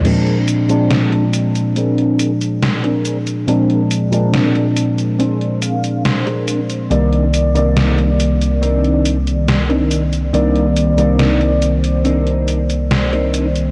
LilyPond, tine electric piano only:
\new Staff \with { instrumentName = "Tine electric piano" } { \clef bass \time 4/4 \key bes \mixolydian \tempo 4 = 70 <bes, f aes c' d'>8. <bes, f aes c' d'>2.~ <bes, f aes c' d'>16 | <bes, f aes c' d'>8. <bes, f aes c' d'>2.~ <bes, f aes c' d'>16 | <c, ees g bes d''>8. <c, ees g bes d''>2.~ <c, ees g bes d''>16 | <c, ees g bes d''>8. <c, ees g bes d''>2.~ <c, ees g bes d''>16 | }